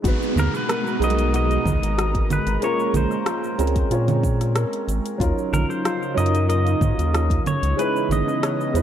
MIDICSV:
0, 0, Header, 1, 8, 480
1, 0, Start_track
1, 0, Tempo, 645161
1, 31, Time_signature, 4, 2, 24, 8
1, 6564, End_track
2, 0, Start_track
2, 0, Title_t, "Pedal steel guitar"
2, 0, Program_c, 0, 26
2, 294, Note_on_c, 0, 70, 89
2, 411, Note_off_c, 0, 70, 0
2, 421, Note_on_c, 0, 71, 96
2, 763, Note_off_c, 0, 71, 0
2, 773, Note_on_c, 0, 75, 110
2, 1001, Note_off_c, 0, 75, 0
2, 1010, Note_on_c, 0, 75, 103
2, 1691, Note_off_c, 0, 75, 0
2, 1731, Note_on_c, 0, 71, 90
2, 1962, Note_off_c, 0, 71, 0
2, 1965, Note_on_c, 0, 73, 100
2, 2204, Note_off_c, 0, 73, 0
2, 2207, Note_on_c, 0, 72, 82
2, 2889, Note_off_c, 0, 72, 0
2, 4119, Note_on_c, 0, 70, 92
2, 4240, Note_on_c, 0, 72, 94
2, 4243, Note_off_c, 0, 70, 0
2, 4592, Note_off_c, 0, 72, 0
2, 4595, Note_on_c, 0, 75, 110
2, 4816, Note_off_c, 0, 75, 0
2, 4832, Note_on_c, 0, 75, 104
2, 5522, Note_off_c, 0, 75, 0
2, 5560, Note_on_c, 0, 73, 102
2, 5796, Note_on_c, 0, 71, 93
2, 5802, Note_off_c, 0, 73, 0
2, 6017, Note_off_c, 0, 71, 0
2, 6044, Note_on_c, 0, 75, 87
2, 6564, Note_off_c, 0, 75, 0
2, 6564, End_track
3, 0, Start_track
3, 0, Title_t, "Synth arpeggio sound"
3, 0, Program_c, 1, 84
3, 36, Note_on_c, 1, 66, 80
3, 168, Note_off_c, 1, 66, 0
3, 510, Note_on_c, 1, 70, 75
3, 727, Note_off_c, 1, 70, 0
3, 996, Note_on_c, 1, 66, 80
3, 1127, Note_off_c, 1, 66, 0
3, 1472, Note_on_c, 1, 66, 77
3, 1605, Note_off_c, 1, 66, 0
3, 1953, Note_on_c, 1, 70, 81
3, 2169, Note_off_c, 1, 70, 0
3, 2430, Note_on_c, 1, 65, 74
3, 2564, Note_off_c, 1, 65, 0
3, 2914, Note_on_c, 1, 65, 88
3, 3046, Note_off_c, 1, 65, 0
3, 3393, Note_on_c, 1, 70, 79
3, 3609, Note_off_c, 1, 70, 0
3, 3872, Note_on_c, 1, 65, 84
3, 4006, Note_off_c, 1, 65, 0
3, 4354, Note_on_c, 1, 65, 80
3, 4486, Note_off_c, 1, 65, 0
3, 4829, Note_on_c, 1, 70, 88
3, 5047, Note_off_c, 1, 70, 0
3, 5311, Note_on_c, 1, 65, 79
3, 5445, Note_off_c, 1, 65, 0
3, 5791, Note_on_c, 1, 68, 81
3, 5925, Note_off_c, 1, 68, 0
3, 6274, Note_on_c, 1, 73, 82
3, 6489, Note_off_c, 1, 73, 0
3, 6564, End_track
4, 0, Start_track
4, 0, Title_t, "Grand piano"
4, 0, Program_c, 2, 0
4, 0, Control_c, 2, 64, 127
4, 17, Note_on_c, 2, 56, 79
4, 25, Note_on_c, 2, 59, 79
4, 35, Note_on_c, 2, 63, 76
4, 39, Control_c, 2, 64, 0
4, 46, Note_on_c, 2, 66, 80
4, 58, Note_on_c, 2, 71, 92
4, 163, Control_c, 2, 64, 127
4, 716, Note_off_c, 2, 56, 0
4, 720, Note_off_c, 2, 59, 0
4, 725, Note_off_c, 2, 63, 0
4, 731, Note_off_c, 2, 66, 0
4, 737, Note_off_c, 2, 71, 0
4, 738, Note_on_c, 2, 56, 93
4, 747, Note_on_c, 2, 59, 90
4, 756, Note_on_c, 2, 63, 90
4, 768, Note_on_c, 2, 66, 86
4, 778, Note_on_c, 2, 70, 105
4, 1917, Note_off_c, 2, 56, 0
4, 1921, Note_off_c, 2, 59, 0
4, 1925, Note_off_c, 2, 63, 0
4, 1932, Note_off_c, 2, 66, 0
4, 1933, Note_on_c, 2, 56, 103
4, 1937, Note_off_c, 2, 70, 0
4, 1946, Note_on_c, 2, 58, 97
4, 1953, Note_on_c, 2, 61, 85
4, 1962, Control_c, 2, 64, 0
4, 1966, Note_on_c, 2, 65, 90
4, 1975, Note_on_c, 2, 70, 109
4, 2070, Control_c, 2, 64, 127
4, 2634, Note_off_c, 2, 56, 0
4, 2641, Note_off_c, 2, 58, 0
4, 2644, Note_off_c, 2, 61, 0
4, 2651, Note_off_c, 2, 65, 0
4, 2655, Note_off_c, 2, 70, 0
4, 2664, Note_on_c, 2, 56, 95
4, 2667, Note_on_c, 2, 60, 83
4, 2671, Note_on_c, 2, 61, 83
4, 2677, Note_on_c, 2, 65, 79
4, 2683, Note_on_c, 2, 70, 102
4, 2880, Note_off_c, 2, 56, 0
4, 2881, Note_off_c, 2, 60, 0
4, 2883, Note_off_c, 2, 61, 0
4, 2886, Note_off_c, 2, 65, 0
4, 2889, Note_off_c, 2, 70, 0
4, 2905, Note_on_c, 2, 56, 80
4, 2906, Note_on_c, 2, 60, 73
4, 2914, Note_on_c, 2, 61, 75
4, 2918, Note_on_c, 2, 65, 72
4, 2924, Note_on_c, 2, 73, 92
4, 3039, Note_off_c, 2, 56, 0
4, 3039, Note_off_c, 2, 60, 0
4, 3043, Note_off_c, 2, 61, 0
4, 3045, Note_off_c, 2, 65, 0
4, 3048, Note_off_c, 2, 73, 0
4, 3853, Note_on_c, 2, 54, 81
4, 3864, Note_on_c, 2, 61, 78
4, 3876, Note_on_c, 2, 63, 76
4, 3880, Control_c, 2, 64, 0
4, 3889, Note_on_c, 2, 65, 75
4, 3896, Note_on_c, 2, 70, 94
4, 4015, Control_c, 2, 64, 127
4, 4554, Note_off_c, 2, 54, 0
4, 4560, Note_off_c, 2, 61, 0
4, 4566, Note_off_c, 2, 63, 0
4, 4570, Note_on_c, 2, 54, 94
4, 4572, Note_off_c, 2, 65, 0
4, 4576, Note_off_c, 2, 70, 0
4, 4580, Note_on_c, 2, 61, 89
4, 4591, Note_on_c, 2, 63, 89
4, 4601, Note_on_c, 2, 65, 91
4, 4611, Note_on_c, 2, 70, 110
4, 5527, Note_off_c, 2, 54, 0
4, 5532, Note_off_c, 2, 61, 0
4, 5537, Note_off_c, 2, 63, 0
4, 5542, Note_off_c, 2, 65, 0
4, 5547, Note_off_c, 2, 70, 0
4, 5561, Control_c, 2, 64, 0
4, 5693, Control_c, 2, 64, 127
4, 5773, Note_on_c, 2, 56, 97
4, 5783, Note_on_c, 2, 61, 90
4, 5793, Note_on_c, 2, 63, 91
4, 5804, Note_on_c, 2, 64, 96
4, 5811, Note_on_c, 2, 71, 111
4, 6474, Note_off_c, 2, 56, 0
4, 6479, Note_off_c, 2, 61, 0
4, 6484, Note_off_c, 2, 63, 0
4, 6490, Note_off_c, 2, 64, 0
4, 6493, Note_off_c, 2, 71, 0
4, 6497, Note_on_c, 2, 56, 92
4, 6504, Note_on_c, 2, 61, 86
4, 6508, Note_on_c, 2, 63, 86
4, 6517, Note_on_c, 2, 64, 86
4, 6522, Note_on_c, 2, 71, 99
4, 6564, Note_off_c, 2, 56, 0
4, 6564, Note_off_c, 2, 61, 0
4, 6564, Note_off_c, 2, 63, 0
4, 6564, Note_off_c, 2, 64, 0
4, 6564, Note_off_c, 2, 71, 0
4, 6564, End_track
5, 0, Start_track
5, 0, Title_t, "Analog synth pad"
5, 0, Program_c, 3, 89
5, 32, Note_on_c, 3, 56, 84
5, 33, Note_on_c, 3, 82, 83
5, 35, Note_on_c, 3, 47, 88
5, 35, Note_on_c, 3, 66, 95
5, 1933, Note_off_c, 3, 66, 0
5, 1934, Note_off_c, 3, 47, 0
5, 3841, Note_off_c, 3, 56, 0
5, 3842, Note_off_c, 3, 82, 0
5, 3860, Note_on_c, 3, 54, 85
5, 3862, Note_on_c, 3, 63, 80
5, 3863, Note_on_c, 3, 49, 90
5, 3864, Note_on_c, 3, 65, 101
5, 5529, Note_off_c, 3, 54, 0
5, 5530, Note_off_c, 3, 63, 0
5, 5530, Note_off_c, 3, 65, 0
5, 5549, Note_on_c, 3, 75, 89
5, 5550, Note_on_c, 3, 59, 72
5, 5553, Note_on_c, 3, 52, 75
5, 6564, Note_off_c, 3, 49, 0
5, 6564, Note_off_c, 3, 52, 0
5, 6564, Note_off_c, 3, 59, 0
5, 6564, Note_off_c, 3, 75, 0
5, 6564, End_track
6, 0, Start_track
6, 0, Title_t, "Analog synth bass"
6, 0, Program_c, 4, 38
6, 31, Note_on_c, 4, 32, 105
6, 123, Note_off_c, 4, 32, 0
6, 265, Note_on_c, 4, 39, 103
6, 360, Note_off_c, 4, 39, 0
6, 742, Note_on_c, 4, 35, 82
6, 1178, Note_off_c, 4, 35, 0
6, 1228, Note_on_c, 4, 37, 100
6, 1322, Note_off_c, 4, 37, 0
6, 1353, Note_on_c, 4, 32, 95
6, 1782, Note_off_c, 4, 32, 0
6, 1830, Note_on_c, 4, 32, 88
6, 1918, Note_off_c, 4, 32, 0
6, 2184, Note_on_c, 4, 34, 97
6, 2279, Note_off_c, 4, 34, 0
6, 2670, Note_on_c, 4, 37, 80
6, 2850, Note_off_c, 4, 37, 0
6, 2906, Note_on_c, 4, 46, 82
6, 3461, Note_off_c, 4, 46, 0
6, 3628, Note_on_c, 4, 32, 74
6, 3721, Note_off_c, 4, 32, 0
6, 3868, Note_on_c, 4, 39, 110
6, 3961, Note_off_c, 4, 39, 0
6, 4111, Note_on_c, 4, 34, 98
6, 4203, Note_off_c, 4, 34, 0
6, 4594, Note_on_c, 4, 42, 83
6, 5024, Note_off_c, 4, 42, 0
6, 5066, Note_on_c, 4, 44, 104
6, 5160, Note_off_c, 4, 44, 0
6, 5197, Note_on_c, 4, 39, 98
6, 5503, Note_off_c, 4, 39, 0
6, 5673, Note_on_c, 4, 37, 84
6, 5759, Note_off_c, 4, 37, 0
6, 6019, Note_on_c, 4, 32, 100
6, 6117, Note_off_c, 4, 32, 0
6, 6504, Note_on_c, 4, 40, 85
6, 6564, Note_off_c, 4, 40, 0
6, 6564, End_track
7, 0, Start_track
7, 0, Title_t, "Downlifter"
7, 0, Program_c, 5, 103
7, 32, Note_on_c, 5, 60, 73
7, 3871, Note_off_c, 5, 60, 0
7, 6564, End_track
8, 0, Start_track
8, 0, Title_t, "Drums"
8, 31, Note_on_c, 9, 36, 113
8, 37, Note_on_c, 9, 42, 57
8, 40, Note_on_c, 9, 69, 47
8, 105, Note_off_c, 9, 36, 0
8, 111, Note_off_c, 9, 42, 0
8, 114, Note_off_c, 9, 69, 0
8, 166, Note_on_c, 9, 69, 31
8, 241, Note_off_c, 9, 69, 0
8, 278, Note_on_c, 9, 64, 80
8, 281, Note_on_c, 9, 69, 77
8, 353, Note_off_c, 9, 64, 0
8, 356, Note_off_c, 9, 69, 0
8, 402, Note_on_c, 9, 37, 33
8, 405, Note_on_c, 9, 69, 35
8, 477, Note_off_c, 9, 37, 0
8, 480, Note_off_c, 9, 69, 0
8, 516, Note_on_c, 9, 37, 110
8, 516, Note_on_c, 9, 42, 60
8, 519, Note_on_c, 9, 69, 45
8, 591, Note_off_c, 9, 37, 0
8, 591, Note_off_c, 9, 42, 0
8, 594, Note_off_c, 9, 69, 0
8, 646, Note_on_c, 9, 69, 30
8, 720, Note_off_c, 9, 69, 0
8, 759, Note_on_c, 9, 42, 41
8, 762, Note_on_c, 9, 69, 72
8, 819, Note_off_c, 9, 42, 0
8, 819, Note_on_c, 9, 42, 51
8, 837, Note_off_c, 9, 69, 0
8, 882, Note_off_c, 9, 42, 0
8, 882, Note_on_c, 9, 42, 46
8, 885, Note_on_c, 9, 69, 32
8, 956, Note_off_c, 9, 42, 0
8, 959, Note_off_c, 9, 69, 0
8, 997, Note_on_c, 9, 42, 58
8, 1000, Note_on_c, 9, 69, 47
8, 1071, Note_off_c, 9, 42, 0
8, 1074, Note_off_c, 9, 69, 0
8, 1122, Note_on_c, 9, 42, 31
8, 1125, Note_on_c, 9, 69, 29
8, 1197, Note_off_c, 9, 42, 0
8, 1200, Note_off_c, 9, 69, 0
8, 1232, Note_on_c, 9, 36, 105
8, 1239, Note_on_c, 9, 64, 62
8, 1242, Note_on_c, 9, 69, 75
8, 1306, Note_off_c, 9, 36, 0
8, 1313, Note_off_c, 9, 64, 0
8, 1316, Note_off_c, 9, 69, 0
8, 1364, Note_on_c, 9, 42, 51
8, 1367, Note_on_c, 9, 69, 33
8, 1438, Note_off_c, 9, 42, 0
8, 1441, Note_off_c, 9, 69, 0
8, 1477, Note_on_c, 9, 37, 106
8, 1477, Note_on_c, 9, 42, 60
8, 1480, Note_on_c, 9, 69, 45
8, 1552, Note_off_c, 9, 37, 0
8, 1552, Note_off_c, 9, 42, 0
8, 1554, Note_off_c, 9, 69, 0
8, 1597, Note_on_c, 9, 36, 102
8, 1599, Note_on_c, 9, 42, 45
8, 1671, Note_off_c, 9, 36, 0
8, 1673, Note_off_c, 9, 42, 0
8, 1714, Note_on_c, 9, 42, 35
8, 1714, Note_on_c, 9, 64, 83
8, 1717, Note_on_c, 9, 69, 79
8, 1789, Note_off_c, 9, 42, 0
8, 1789, Note_off_c, 9, 64, 0
8, 1791, Note_off_c, 9, 69, 0
8, 1836, Note_on_c, 9, 42, 43
8, 1838, Note_on_c, 9, 69, 34
8, 1910, Note_off_c, 9, 42, 0
8, 1913, Note_off_c, 9, 69, 0
8, 1950, Note_on_c, 9, 42, 52
8, 1952, Note_on_c, 9, 69, 47
8, 2024, Note_off_c, 9, 42, 0
8, 2027, Note_off_c, 9, 69, 0
8, 2080, Note_on_c, 9, 69, 33
8, 2154, Note_off_c, 9, 69, 0
8, 2189, Note_on_c, 9, 42, 32
8, 2189, Note_on_c, 9, 64, 74
8, 2192, Note_on_c, 9, 69, 78
8, 2263, Note_off_c, 9, 42, 0
8, 2263, Note_off_c, 9, 64, 0
8, 2266, Note_off_c, 9, 69, 0
8, 2312, Note_on_c, 9, 37, 31
8, 2315, Note_on_c, 9, 69, 35
8, 2387, Note_off_c, 9, 37, 0
8, 2390, Note_off_c, 9, 69, 0
8, 2427, Note_on_c, 9, 37, 111
8, 2427, Note_on_c, 9, 42, 57
8, 2430, Note_on_c, 9, 69, 46
8, 2501, Note_off_c, 9, 37, 0
8, 2501, Note_off_c, 9, 42, 0
8, 2504, Note_off_c, 9, 69, 0
8, 2558, Note_on_c, 9, 69, 32
8, 2632, Note_off_c, 9, 69, 0
8, 2671, Note_on_c, 9, 42, 39
8, 2674, Note_on_c, 9, 69, 77
8, 2733, Note_off_c, 9, 42, 0
8, 2733, Note_on_c, 9, 42, 51
8, 2748, Note_off_c, 9, 69, 0
8, 2795, Note_off_c, 9, 42, 0
8, 2795, Note_on_c, 9, 42, 42
8, 2796, Note_on_c, 9, 36, 109
8, 2798, Note_on_c, 9, 69, 36
8, 2870, Note_off_c, 9, 36, 0
8, 2870, Note_off_c, 9, 42, 0
8, 2873, Note_off_c, 9, 69, 0
8, 2909, Note_on_c, 9, 42, 57
8, 2912, Note_on_c, 9, 69, 48
8, 2984, Note_off_c, 9, 42, 0
8, 2987, Note_off_c, 9, 69, 0
8, 3036, Note_on_c, 9, 42, 32
8, 3036, Note_on_c, 9, 64, 72
8, 3039, Note_on_c, 9, 69, 29
8, 3111, Note_off_c, 9, 42, 0
8, 3111, Note_off_c, 9, 64, 0
8, 3114, Note_off_c, 9, 69, 0
8, 3150, Note_on_c, 9, 36, 113
8, 3155, Note_on_c, 9, 69, 78
8, 3225, Note_off_c, 9, 36, 0
8, 3230, Note_off_c, 9, 69, 0
8, 3280, Note_on_c, 9, 37, 34
8, 3280, Note_on_c, 9, 42, 47
8, 3283, Note_on_c, 9, 69, 36
8, 3355, Note_off_c, 9, 37, 0
8, 3355, Note_off_c, 9, 42, 0
8, 3358, Note_off_c, 9, 69, 0
8, 3389, Note_on_c, 9, 37, 108
8, 3389, Note_on_c, 9, 42, 58
8, 3392, Note_on_c, 9, 69, 48
8, 3464, Note_off_c, 9, 37, 0
8, 3464, Note_off_c, 9, 42, 0
8, 3466, Note_off_c, 9, 69, 0
8, 3520, Note_on_c, 9, 42, 44
8, 3594, Note_off_c, 9, 42, 0
8, 3635, Note_on_c, 9, 42, 34
8, 3637, Note_on_c, 9, 69, 82
8, 3709, Note_off_c, 9, 42, 0
8, 3712, Note_off_c, 9, 69, 0
8, 3761, Note_on_c, 9, 42, 48
8, 3764, Note_on_c, 9, 69, 36
8, 3835, Note_off_c, 9, 42, 0
8, 3838, Note_off_c, 9, 69, 0
8, 3869, Note_on_c, 9, 36, 123
8, 3878, Note_on_c, 9, 42, 52
8, 3881, Note_on_c, 9, 69, 45
8, 3943, Note_off_c, 9, 36, 0
8, 3952, Note_off_c, 9, 42, 0
8, 3955, Note_off_c, 9, 69, 0
8, 4005, Note_on_c, 9, 69, 34
8, 4079, Note_off_c, 9, 69, 0
8, 4117, Note_on_c, 9, 64, 73
8, 4120, Note_on_c, 9, 69, 86
8, 4191, Note_off_c, 9, 64, 0
8, 4194, Note_off_c, 9, 69, 0
8, 4241, Note_on_c, 9, 37, 30
8, 4244, Note_on_c, 9, 69, 33
8, 4315, Note_off_c, 9, 37, 0
8, 4318, Note_off_c, 9, 69, 0
8, 4355, Note_on_c, 9, 37, 107
8, 4355, Note_on_c, 9, 42, 58
8, 4357, Note_on_c, 9, 69, 51
8, 4429, Note_off_c, 9, 37, 0
8, 4429, Note_off_c, 9, 42, 0
8, 4432, Note_off_c, 9, 69, 0
8, 4484, Note_on_c, 9, 69, 32
8, 4558, Note_off_c, 9, 69, 0
8, 4595, Note_on_c, 9, 42, 37
8, 4597, Note_on_c, 9, 69, 76
8, 4657, Note_off_c, 9, 42, 0
8, 4657, Note_on_c, 9, 42, 50
8, 4672, Note_off_c, 9, 69, 0
8, 4722, Note_off_c, 9, 42, 0
8, 4722, Note_on_c, 9, 42, 43
8, 4725, Note_on_c, 9, 69, 36
8, 4796, Note_off_c, 9, 42, 0
8, 4799, Note_off_c, 9, 69, 0
8, 4833, Note_on_c, 9, 42, 57
8, 4836, Note_on_c, 9, 69, 50
8, 4908, Note_off_c, 9, 42, 0
8, 4911, Note_off_c, 9, 69, 0
8, 4959, Note_on_c, 9, 42, 30
8, 4962, Note_on_c, 9, 69, 32
8, 5034, Note_off_c, 9, 42, 0
8, 5036, Note_off_c, 9, 69, 0
8, 5068, Note_on_c, 9, 36, 112
8, 5071, Note_on_c, 9, 64, 53
8, 5074, Note_on_c, 9, 69, 80
8, 5142, Note_off_c, 9, 36, 0
8, 5145, Note_off_c, 9, 64, 0
8, 5148, Note_off_c, 9, 69, 0
8, 5201, Note_on_c, 9, 42, 44
8, 5204, Note_on_c, 9, 69, 36
8, 5275, Note_off_c, 9, 42, 0
8, 5278, Note_off_c, 9, 69, 0
8, 5315, Note_on_c, 9, 37, 111
8, 5315, Note_on_c, 9, 42, 54
8, 5318, Note_on_c, 9, 69, 49
8, 5390, Note_off_c, 9, 37, 0
8, 5390, Note_off_c, 9, 42, 0
8, 5393, Note_off_c, 9, 69, 0
8, 5432, Note_on_c, 9, 36, 99
8, 5439, Note_on_c, 9, 42, 45
8, 5507, Note_off_c, 9, 36, 0
8, 5513, Note_off_c, 9, 42, 0
8, 5553, Note_on_c, 9, 42, 32
8, 5553, Note_on_c, 9, 64, 78
8, 5556, Note_on_c, 9, 69, 80
8, 5627, Note_off_c, 9, 42, 0
8, 5627, Note_off_c, 9, 64, 0
8, 5630, Note_off_c, 9, 69, 0
8, 5677, Note_on_c, 9, 42, 44
8, 5680, Note_on_c, 9, 69, 35
8, 5752, Note_off_c, 9, 42, 0
8, 5754, Note_off_c, 9, 69, 0
8, 5796, Note_on_c, 9, 42, 54
8, 5799, Note_on_c, 9, 69, 48
8, 5870, Note_off_c, 9, 42, 0
8, 5873, Note_off_c, 9, 69, 0
8, 5924, Note_on_c, 9, 69, 33
8, 5998, Note_off_c, 9, 69, 0
8, 6035, Note_on_c, 9, 42, 30
8, 6035, Note_on_c, 9, 64, 74
8, 6038, Note_on_c, 9, 69, 80
8, 6110, Note_off_c, 9, 42, 0
8, 6110, Note_off_c, 9, 64, 0
8, 6113, Note_off_c, 9, 69, 0
8, 6160, Note_on_c, 9, 37, 30
8, 6163, Note_on_c, 9, 69, 35
8, 6235, Note_off_c, 9, 37, 0
8, 6238, Note_off_c, 9, 69, 0
8, 6273, Note_on_c, 9, 37, 104
8, 6273, Note_on_c, 9, 42, 53
8, 6276, Note_on_c, 9, 69, 48
8, 6347, Note_off_c, 9, 37, 0
8, 6347, Note_off_c, 9, 42, 0
8, 6350, Note_off_c, 9, 69, 0
8, 6403, Note_on_c, 9, 69, 34
8, 6477, Note_off_c, 9, 69, 0
8, 6511, Note_on_c, 9, 42, 40
8, 6514, Note_on_c, 9, 69, 77
8, 6564, Note_off_c, 9, 42, 0
8, 6564, Note_off_c, 9, 69, 0
8, 6564, End_track
0, 0, End_of_file